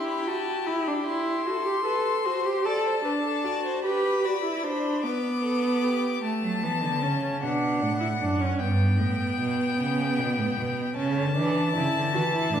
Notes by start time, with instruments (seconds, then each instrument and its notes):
Already playing: viola E4, violin G4
0.07 violin B5
0.27 viola F#4, violin A5
0.66 viola E4, violin B5
0.88 viola D4
1.06 viola E4, violin C6
1.46 viola F#4, violin A4
1.66 viola G4
1.85 viola A4, violin B4
2.25 viola F#4, violin C5
2.45 viola G4
2.65 viola A4, violin D5 A5
2.86 violin C5
3.04 viola D4, violin B4
3.25 violin A4
3.44 viola F#4, violin D5
3.65 violin C5
3.84 viola G4, violin B4 B5
4.24 viola F#4, violin D5
4.44 viola E4
4.63 viola D4, violin C5
5.03 viola B3, violin B4 D6
5.44 violin A4
5.84 violin G4
6.23 viola A3, violin A5
6.43 cello F#3
6.62 cello E3, viola B3
6.83 cello D3
7.02 cello C#3, viola C#4
7.42 cello B2, viola D4, violin F#5
7.82 cello A2
8.00 viola E4
8.21 cello F#2, viola D4
8.41 viola C#4
8.60 cello G2, viola B3, violin G5
8.99 cello A2
9.39 cello B2
9.79 cello C#3
10.18 cello B2
10.38 cello A2
10.57 cello B2
10.96 cello C#3, viola C#4, violin A5
11.17 cello D3
11.36 cello E3, viola D4
11.75 cello C#3, viola E4
11.96 cello D3
12.14 cello E3, viola F#4
12.34 viola E4
12.53 cello A2, viola D4